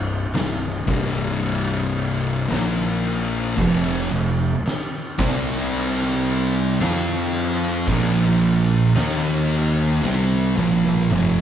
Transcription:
Already playing: picked electric bass C1, distorted electric guitar C2 G2
0.33 picked electric bass C1, distorted electric guitar C2 G2, snare, crash
0.87 picked electric bass C1, distorted electric guitar C2 G2 C3, kick, crash
1.43 crash
1.97 crash
2.49 picked electric bass A#1, distorted electric guitar A#2 F3 A#3, snare, crash
3.05 crash
3.56 picked electric bass F1, distorted electric guitar F2 C3 F3, kick, crash
4.10 picked electric bass F1, distorted electric guitar F2 C3, crash
4.66 snare, crash
5.18 picked electric bass C2, distorted electric guitar C3 G3 C4, kick, crash
5.73 crash
6.01 snare
6.27 crash
6.80 picked electric bass F2, distorted electric guitar F3 C4 F4, snare, crash
7.34 crash
7.87 picked electric bass A#1, distorted electric guitar A#2 F3 A#3, kick, crash
8.41 crash
8.95 picked electric bass D#2, distorted electric guitar D#3 A#3 D#4, snare, crash
9.49 crash
10.03 picked electric bass C2, distorted electric guitar C3 G3 C4, snare
10.56 picked electric bass A#1, distorted electric guitar A#2 F3 A#3, high tom
10.84 high tom
11.11 picked electric bass F1, distorted electric guitar F2 C3 F3, mid tom

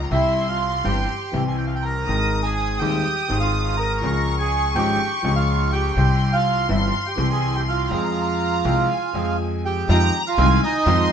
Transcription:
Already playing: violin section A#5
0.11 upright bass C2, grand piano C2 C3 G3 C4 G4, bandoneon E4 E5, violin section C6
0.48 bandoneon F4 F5
0.84 upright bass G1, grand piano G1 G2 E3 G3 C4 G4, bandoneon G4 G5
1.32 upright bass C2, grand piano C2 C3 E3 G3 C4
1.36 grand piano G4
1.48 bandoneon G#5
1.58 bandoneon G5
1.66 bandoneon F5
1.75 bandoneon G5
1.82 bandoneon A#4 A#5
2.06 upright bass G#1, grand piano G#1 G#2 D#3 G#3 C4, violin section D#6
2.10 grand piano G#4
2.43 bandoneon G#4 G#5
2.56 violin section D#6
2.79 grand piano D#1 D#2 D#3 G#3 C4 G#4, upright bass D#2, bandoneon G4 G5
3.28 upright bass G#1, grand piano G#1 G#2 D#3 G#3 C4 G#4
3.40 bandoneon F4 F5
3.77 bandoneon A#4 A#5
4.01 upright bass C#2, grand piano C#2 C#3 F3 G#3 C#4, violin section C#6
4.05 grand piano G#4
4.39 bandoneon G#4 G#5
4.75 upright bass G#1, grand piano G#1 G#2 F3 G#3 C#4 G#4, bandoneon G4 G5
5.22 upright bass C#2, grand piano C#2 C#3 F3 G#3 C#4
5.27 grand piano G#4
5.36 bandoneon F4 F5
5.72 bandoneon G4 G5
5.96 upright bass C2, grand piano C2 C3 G3 C4 G4, violin section C6
6.33 bandoneon F4 F5
6.69 grand piano G1 G2 E3 G3 C4 G4, upright bass G1, bandoneon E4 E5
6.82 bandoneon F4 F5
7.06 bandoneon G4 G5
7.16 upright bass C2, grand piano C2 C3 E3 G3 C4
7.20 grand piano G4
7.31 bandoneon G#4 G#5
7.56 bandoneon G4 G5
7.68 bandoneon F4 F5
7.90 grand piano F2 F3 G#3 C4 G#4, upright bass F2, violin section A#5
8.65 upright bass C2, grand piano C2 C3 F3 G#3 C4 G#4
8.90 violin section G#5
9.13 upright bass F2, grand piano F2 F3 G#3 C4
9.17 grand piano G#4
9.65 bandoneon G4 G5
9.89 upright bass F2, grand piano F2 D#3 F3 G#3 C4 F4, string section G#3 D#4 F4, violin section A#5
10.27 bandoneon F4 F5
10.38 upright bass C2, grand piano C2 C3 D#3 G#3 C4 F4, string section G#3 D#4 F4, violin section G#5
10.64 bandoneon D#4 D#5
10.86 upright bass F2, grand piano F2 D#3 F3 G#3 C4 F4, string section G#3 D#4 F4, violin section C6

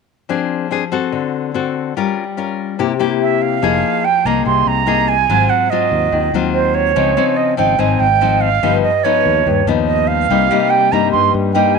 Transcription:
0.29 nylon-string guitar F3 C4 D4 G#4
0.71 nylon-string guitar C4 D4 G#4
0.92 nylon-string guitar C4 F#4 A4
1.12 nylon-string guitar D3
1.54 nylon-string guitar C4 F#4 A4
1.97 nylon-string guitar G3 C#4 F4 A#4
2.37 nylon-string guitar C#4 F4 A#4
2.79 nylon-string guitar C3 A#3 E4 G4
2.99 nylon-string guitar A#3 E4 G4
3.21 flute E5
3.42 flute F5
3.62 fingered electric bass F1, nylon-string guitar F3 A#3 D#4 G#4
4.04 flute G5
4.25 fingered electric bass C2, nylon-string guitar A#3 D#4 G#4, flute A#5
4.45 fingered electric bass C2, nylon-string guitar C3, flute C6
4.66 fingered electric bass C2, flute A#5
4.86 nylon-string guitar A#3 D#4 G#4
5.08 flute G#5
5.29 fingered electric bass G#1, nylon-string guitar G#2 F#3 C4 F4
5.49 flute F#5
5.70 nylon-string guitar F#3 C4 F4, flute D#5
5.92 fingered electric bass D#2
6.12 fingered electric bass D#2, nylon-string guitar D#3
6.34 fingered electric bass D#2, nylon-string guitar F#3 C4 F4
6.54 flute C5
6.74 flute C#5
6.96 fingered electric bass C#2, nylon-string guitar C#3 F3 C4 D#4
7.17 nylon-string guitar F3 C4 D#4
7.36 flute D#5
7.57 fingered electric bass G#1, nylon-string guitar F3 C4 D#4, flute G5
7.78 fingered electric bass G#1, nylon-string guitar G#2 F3 C4 D#4, flute G#5
7.99 fingered electric bass G#1, flute G5
8.21 nylon-string guitar F3 C4 D#4
8.40 flute F5
8.63 fingered electric bass G1, nylon-string guitar G2 F3 B3 D#4
8.82 flute D#5
9.03 nylon-string guitar F3 B3 D#4, flute C#5
9.26 fingered electric bass D#2
9.46 fingered electric bass D#2, nylon-string guitar G2
9.67 fingered electric bass D#2, nylon-string guitar F3 B3 D#4
9.85 flute D#5
10.07 flute F5
10.29 fingered electric bass C2, nylon-string guitar C3 G3 A#3 D#4
10.51 nylon-string guitar G3 A#3 D#4
10.70 flute G5
10.92 fingered electric bass G2, nylon-string guitar G3 A#3 D#4, flute A#5
11.11 nylon-string guitar G2, fingered electric bass G2, flute C6
11.34 fingered electric bass G2
11.53 nylon-string guitar G3 A#3 D#4, flute G5
11.74 flute G#5

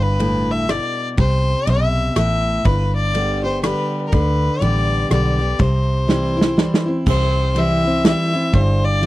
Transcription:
Already playing: fingered electric bass G1, steel-string acoustic guitar G2
0.03 fiddle B4
0.20 steel-string acoustic guitar A2, ride
0.51 fiddle E5
0.69 steel-string acoustic guitar B2, fiddle D5, cross-stick, ride
1.17 fingered electric bass C2, steel-string acoustic guitar C3, fiddle C5, kick, ride
1.67 fingered electric bass B1, steel-string acoustic guitar B2, fiddle E5, ride
2.16 fingered electric bass A1, steel-string acoustic guitar A2, fiddle E5, cross-stick, ride
2.65 fingered electric bass G1, steel-string acoustic guitar G2, fiddle B4, kick, ride
2.96 fiddle D5
3.14 steel-string acoustic guitar D3 G3 B3 G4, ride
3.44 steel-string acoustic guitar B3 G4, fiddle C5
3.63 steel-string acoustic guitar D3 G3 B3 G4, fiddle B4, cross-stick, ride
4.07 fiddle A#4
4.12 fingered electric bass D2, steel-string acoustic guitar D3, fiddle B4, kick, ride
4.60 fingered electric bass A1, steel-string acoustic guitar D3 G3 B3 G4, fiddle D5, ride
5.09 fingered electric bass B1, steel-string acoustic guitar D3 G3 B3 G4, fiddle D5, cross-stick, ride
5.39 steel-string acoustic guitar B3 G4
5.59 fingered electric bass C2, steel-string acoustic guitar C3, fiddle C5, kick, ride
6.07 steel-string acoustic guitar E3 G3 C4 E4, snare
6.37 steel-string acoustic guitar C4 E4
6.41 snare
6.57 steel-string acoustic guitar E3 G3 C4 E4, snare
6.74 snare
6.86 steel-string acoustic guitar C4 E4
7.06 fingered electric bass C2, steel-string acoustic guitar C3, fiddle C5, kick, crash
7.55 steel-string acoustic guitar E3 G3 C4 E4, ride
7.59 fiddle E5
7.84 steel-string acoustic guitar C4 E4
8.04 steel-string acoustic guitar E3 G3 C4 E4, fiddle E5, snare, ride
8.33 steel-string acoustic guitar C4 E4
8.53 fingered electric bass G1, steel-string acoustic guitar G2, fiddle C5, kick, ride
8.85 fiddle D5
9.02 steel-string acoustic guitar E3 G3, ride

